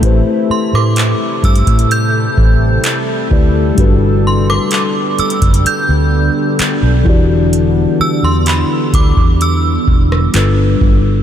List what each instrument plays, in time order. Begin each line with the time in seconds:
Already playing: ambient pad A3 E4
0.01 fingered electric bass A1, ambient pad C3 G3 A4, tine electric piano A3 E4 G4 B4, kick, closed hi-hat
0.06 tine electric piano C5
0.50 synth bell C6, muted fingered electric bass stroke
0.73 fingered electric bass A2, synth bell D6, cross-stick
0.96 clap, closed hi-hat
1.44 fingered electric bass G2, synth bell E6, kick, closed hi-hat
1.55 closed hi-hat
1.67 fingered electric bass A2, kick, closed hi-hat
1.79 closed hi-hat
1.91 synth bell G6, closed hi-hat
2.38 fingered electric bass A1, kick
2.84 clap, closed hi-hat
3.30 fingered electric bass D2, tine electric piano A3 E4 G4 B4 D5, kick
3.75 fingered electric bass G1, ambient pad D3 B3 D4, tine electric piano G3 D4 F#4, kick, closed hi-hat
3.79 tine electric piano A4 B4
4.27 synth bell C6
4.50 synth bell D6, cross-stick
4.71 clap, closed hi-hat
5.19 synth bell E6, muted fingered electric bass stroke, closed hi-hat
5.30 closed hi-hat
5.42 fingered electric bass F#1, kick, closed hi-hat
5.54 closed hi-hat
5.66 synth bell G6, muted fingered electric bass stroke, closed hi-hat
5.89 fingered electric bass D2
6.59 muted fingered electric bass stroke, clap, closed hi-hat
6.83 fingered electric bass B1
7.04 tine electric piano E3 E4 F#4, ambient pad E4, kick
7.08 tine electric piano G4 D5
7.53 closed hi-hat
8.00 synth bell E6, muted fingered electric bass stroke
8.23 fingered electric bass E2, synth bell C6
8.46 synth bell B5, clap, closed hi-hat
8.94 fingered electric bass D2, synth bell D6, kick, closed hi-hat
9.17 fingered electric bass E2, kick
9.41 synth bell E6, closed hi-hat
9.88 fingered electric bass E1, kick
10.12 cross-stick
10.33 fingered electric bass G1, tine electric piano G3 D4 F4 A4 B4, ambient pad F4 G4, clap, closed hi-hat
10.81 fingered electric bass G1, kick